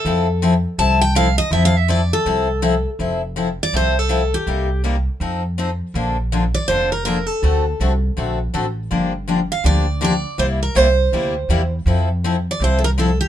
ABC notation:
X:1
M:4/4
L:1/16
Q:"Swing" 1/4=162
K:F
V:1 name="Steel-string acoustic guitar"
A4 z4 a2 g2 f2 _e2 | (3e2 f2 e2 d2 A8- A z | z6 d2 c2 A4 G2- | G4 z12 |
z6 d2 c2 B2 B2 A2- | A4 z12 | z6 f2 d4 d4 | c2 B2 c8- c2 z2 |
z6 d2 c3/2 A/2 B2 A2 G2 |]
V:2 name="Steel-string acoustic guitar"
[F,CEA]2 z2 [F,CEA] z3 [F,CEA]2 z2 [F,CEA] z3 | [F,CEA]2 z2 [F,CEA] z3 [F,CEA]2 z2 [F,CEA] z3 | [F,CEA]2 z2 [F,CEA] z3 [F,CEA]2 z2 [F,CEA] z3 | [C,G,B,_EG]2 z2 [C,G,B,EG] z3 [F,CEA]2 z2 [F,CEA] z3 |
[D,F,B,DA]2 z2 [D,F,B,DA] z3 [D,F,B,DA]2 z2 [D,F,B,DA] z3 | [D,A,C^FA]2 z2 [D,A,CFA] z3 [D,A,CFA]2 z2 [D,A,CFA] z3 | [D,F,B,DG]2 z2 [D,F,B,DG] z3 [D,F,B,DG]2 z2 [D,F,B,DG] z3 | [C,G,B,EG]2 z2 [C,G,B,EG] z3 [C,G,B,EG]2 z2 [C,G,B,EG] z3 |
[F,CEA]2 z2 [F,CEA] z3 [F,CEA]2 z2 [F,CEA] z3 |]
V:3 name="Upright bass" clef=bass
F,,8 C,,8 | F,,8 C,,8 | F,,,8 C,,8 | C,,8 F,,8 |
B,,,8 F,,,8 | D,,4 C,,4 B,,,4 A,,,4 | G,,,8 D,,8 | C,,4 C,,4 D,,4 E,,4 |
F,,8 C,,8 |]